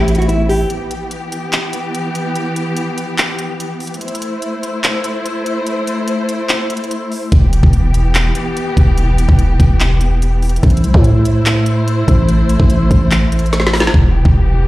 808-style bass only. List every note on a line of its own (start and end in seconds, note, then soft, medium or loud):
0.00 0.66 A1 loud
7.32 7.62 E1 loud
7.63 8.33 E1 loud
8.77 9.27 E1 loud
9.29 9.58 E1 loud
9.60 10.59 E1 loud
10.63 10.85 A1 loud
10.84 10.94 C2 loud
10.94 12.04 A2 loud
12.08 12.58 A1 loud
12.60 12.89 A1 loud
12.91 13.90 A1 loud
13.94 14.24 E1 loud
14.25 14.68 E1 loud